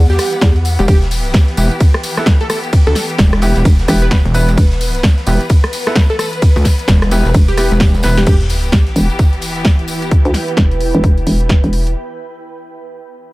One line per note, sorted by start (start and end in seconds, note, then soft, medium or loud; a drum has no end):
0.00 0.18 E2 loud
0.00 8.23 E3 medium
0.00 8.23 B3 medium
0.00 0.87 F#5 medium
0.10 0.56 G4 loud
0.10 snare soft
0.10 closed hi-hat soft
0.10 tambourine soft
0.18 cross-stick medium
0.18 open hi-hat loud
0.18 ride medium
0.18 tambourine medium
0.33 closed hi-hat soft
0.33 tambourine soft
0.41 0.77 E2 loud
0.41 kick loud
0.41 snare loud
0.41 closed hi-hat medium
0.41 ride medium
0.41 tambourine medium
0.56 closed hi-hat soft
0.65 open hi-hat loud
0.65 ride medium
0.65 tambourine medium
0.79 0.87 E1 loud
0.79 0.85 G4 medium
0.79 closed hi-hat medium
0.79 tambourine soft
0.88 1.33 E1 loud
0.88 4.57 G4 medium
0.88 0.97 G4 medium
0.88 kick loud
0.88 closed hi-hat medium
0.88 ride medium
0.88 tambourine medium
1.02 snare medium
1.02 closed hi-hat soft
1.11 open hi-hat loud
1.11 open hi-hat medium
1.11 tambourine medium
1.25 closed hi-hat soft
1.25 tambourine soft
1.34 kick loud
1.34 snare loud
1.34 closed hi-hat medium
1.34 ride medium
1.34 tambourine medium
1.48 snare soft
1.48 closed hi-hat soft
1.57 1.69 E1 loud
1.57 1.70 B3 medium
1.57 1.70 E4 medium
1.57 1.70 G4 medium
1.57 open hi-hat medium
1.57 ride medium
1.57 tambourine loud
1.71 closed hi-hat soft
1.71 tambourine soft
1.80 kick loud
1.80 closed hi-hat medium
1.80 ride medium
1.80 tambourine medium
1.94 cross-stick medium
1.94 closed hi-hat soft
2.03 open hi-hat loud
2.03 ride medium
2.03 tambourine loud
2.17 2.33 B3 medium
2.17 2.33 E4 medium
2.17 2.33 A4 medium
2.17 cross-stick medium
2.17 snare medium
2.17 tambourine soft
2.26 kick loud
2.26 snare loud
2.26 closed hi-hat medium
2.26 ride medium
2.26 tambourine soft
2.41 2.47 A4 medium
2.41 closed hi-hat soft
2.49 2.59 A4 medium
2.49 cross-stick medium
2.49 open hi-hat loud
2.49 ride medium
2.49 tambourine medium
2.64 closed hi-hat soft
2.64 tambourine soft
2.73 kick loud
2.73 closed hi-hat medium
2.73 ride medium
2.73 ride loud
2.73 tambourine medium
2.87 2.94 D2 medium
2.87 3.06 A4 loud
2.87 closed hi-hat soft
2.95 snare medium
2.95 open hi-hat loud
2.95 ride medium
2.95 tambourine medium
3.10 closed hi-hat medium
3.10 tambourine soft
3.18 3.54 E1 loud
3.18 kick loud
3.18 snare loud
3.18 closed hi-hat medium
3.18 ride medium
3.18 tambourine soft
3.33 cross-stick medium
3.33 snare soft
3.33 closed hi-hat soft
3.42 3.55 B3 loud
3.42 3.55 E4 medium
3.42 3.55 G4 loud
3.42 open hi-hat loud
3.42 ride medium
3.42 tambourine medium
3.55 3.64 E1 loud
3.55 snare medium
3.55 closed hi-hat soft
3.55 tambourine soft
3.65 3.87 E1 loud
3.65 kick loud
3.65 closed hi-hat medium
3.65 ride medium
3.65 tambourine medium
3.79 snare medium
3.79 closed hi-hat soft
3.88 4.23 E1 loud
3.88 4.01 B3 loud
3.88 4.01 E4 medium
3.88 4.01 G4 loud
3.88 cross-stick medium
3.88 open hi-hat loud
3.88 ride medium
3.88 tambourine medium
4.02 4.08 B4 medium
4.02 tambourine soft
4.11 4.20 B4 medium
4.11 kick loud
4.11 snare loud
4.11 closed hi-hat medium
4.11 ride medium
4.11 ride loud
4.11 tambourine soft
4.25 4.56 E1 loud
4.25 closed hi-hat soft
4.34 4.47 B3 loud
4.34 4.47 E4 loud
4.34 4.47 B4 loud
4.34 open hi-hat medium
4.34 ride medium
4.34 tambourine medium
4.48 closed hi-hat medium
4.48 tambourine soft
4.57 5.02 E1 medium
4.57 8.26 B4 medium
4.57 kick loud
4.57 closed hi-hat medium
4.57 ride loud
4.57 ride medium
4.57 tambourine medium
4.72 snare medium
4.72 closed hi-hat soft
4.81 open hi-hat medium
4.81 open hi-hat loud
4.81 tambourine loud
4.95 closed hi-hat medium
4.95 tambourine soft
5.03 kick loud
5.03 snare loud
5.03 closed hi-hat medium
5.03 ride medium
5.03 tambourine medium
5.17 snare medium
5.17 closed hi-hat soft
5.26 5.38 E1 loud
5.26 5.40 B3 medium
5.26 5.40 E4 medium
5.26 5.40 G4 medium
5.26 open hi-hat medium
5.26 ride medium
5.26 tambourine medium
5.40 closed hi-hat soft
5.40 tambourine soft
5.49 kick loud
5.49 closed hi-hat medium
5.49 ride medium
5.49 tambourine medium
5.64 cross-stick medium
5.64 closed hi-hat soft
5.73 open hi-hat medium
5.73 ride medium
5.73 tambourine medium
5.86 6.03 B3 medium
5.86 6.03 E4 medium
5.86 6.03 A4 medium
5.86 cross-stick medium
5.86 snare medium
5.86 closed hi-hat soft
5.86 tambourine soft
5.95 kick loud
5.95 snare loud
5.95 closed hi-hat medium
5.95 ride loud
5.95 ride medium
5.95 tambourine medium
6.10 6.16 A4 medium
6.10 closed hi-hat soft
6.19 6.28 A4 medium
6.19 cross-stick medium
6.19 open hi-hat medium
6.19 ride medium
6.19 tambourine medium
6.33 closed hi-hat medium
6.33 tambourine soft
6.42 kick loud
6.42 closed hi-hat medium
6.42 ride loud
6.42 ride medium
6.42 tambourine medium
6.56 6.64 D2 loud
6.56 closed hi-hat soft
6.56 tambourine soft
6.65 kick medium
6.65 snare medium
6.65 open hi-hat loud
6.65 ride medium
6.65 tambourine medium
6.79 closed hi-hat medium
6.79 tambourine soft
6.88 7.23 E1 loud
6.88 kick loud
6.88 snare loud
6.88 closed hi-hat medium
6.88 ride medium
6.88 tambourine medium
7.02 cross-stick medium
7.02 snare soft
7.02 closed hi-hat soft
7.11 7.24 B3 loud
7.11 7.24 E4 medium
7.11 7.24 G4 loud
7.11 open hi-hat medium
7.11 ride medium
7.11 tambourine medium
7.25 7.33 E1 loud
7.25 snare medium
7.25 closed hi-hat soft
7.25 tambourine soft
7.34 7.69 E1 loud
7.34 kick loud
7.34 closed hi-hat medium
7.34 ride medium
7.34 tambourine medium
7.48 7.95 G4 loud
7.48 closed hi-hat soft
7.48 tambourine soft
7.57 7.70 B3 medium
7.57 7.70 E4 medium
7.57 7.70 G4 loud
7.57 cross-stick medium
7.57 open hi-hat loud
7.57 ride medium
7.57 tambourine loud
7.71 8.02 E1 loud
7.71 closed hi-hat soft
7.71 tambourine soft
7.80 kick loud
7.80 snare loud
7.80 closed hi-hat medium
7.80 ride medium
7.80 tambourine soft
7.94 closed hi-hat soft
7.94 tambourine soft
8.03 8.25 E1 loud
8.03 8.16 B3 loud
8.03 8.16 E4 medium
8.03 8.16 B4 loud
8.03 snare medium
8.03 snare loud
8.03 open hi-hat medium
8.03 ride medium
8.03 tambourine medium
8.17 8.24 G4 medium
8.17 snare medium
8.17 snare loud
8.17 closed hi-hat medium
8.17 ride medium
8.17 tambourine soft
8.27 8.71 E1 loud
8.27 11.92 E3 medium
8.27 11.92 B3 medium
8.27 11.96 E4 medium
8.27 8.36 G4 medium
8.27 11.92 G4 medium
8.27 kick loud
8.27 closed hi-hat medium
8.27 crash medium
8.27 ride loud
8.27 tambourine medium
8.27 sub drop medium
8.41 snare medium
8.41 closed hi-hat soft
8.50 open hi-hat medium
8.50 open hi-hat loud
8.50 tambourine medium
8.64 11.96 B4 medium
8.64 closed hi-hat medium
8.64 tambourine soft
8.72 kick loud
8.72 snare loud
8.72 closed hi-hat medium
8.72 ride medium
8.72 tambourine medium
8.87 snare soft
8.87 closed hi-hat soft
8.95 9.08 E1 loud
8.95 11.96 G5 medium
8.95 open hi-hat medium
8.95 ride medium
8.95 tambourine medium
9.10 closed hi-hat soft
9.10 tambourine soft
9.19 kick loud
9.19 closed hi-hat medium
9.19 ride medium
9.19 tambourine medium
9.33 closed hi-hat soft
9.41 open hi-hat loud
9.41 ride medium
9.41 tambourine medium
9.56 snare soft
9.56 closed hi-hat soft
9.56 tambourine soft
9.65 kick loud
9.65 snare loud
9.65 closed hi-hat medium
9.65 ride medium
9.65 tambourine soft
9.79 closed hi-hat soft
9.88 open hi-hat medium
9.88 ride medium
9.88 tambourine medium
10.02 closed hi-hat medium
10.02 tambourine soft
10.11 kick loud
10.11 closed hi-hat medium
10.25 10.33 D2 medium
10.25 closed hi-hat soft
10.34 snare medium
10.34 open hi-hat loud
10.48 closed hi-hat soft
10.57 10.92 E1 loud
10.57 kick loud
10.57 snare loud
10.57 closed hi-hat medium
10.71 closed hi-hat soft
10.80 open hi-hat medium
10.95 11.02 E1 loud
10.95 closed hi-hat soft
11.04 11.25 E1 loud
11.04 kick loud
11.04 closed hi-hat medium
11.18 closed hi-hat soft
11.27 11.62 E1 loud
11.27 open hi-hat loud
11.41 closed hi-hat soft
11.49 kick loud
11.49 snare loud
11.49 closed hi-hat medium
11.64 11.95 E1 loud
11.64 closed hi-hat soft
11.73 open hi-hat medium
11.87 closed hi-hat soft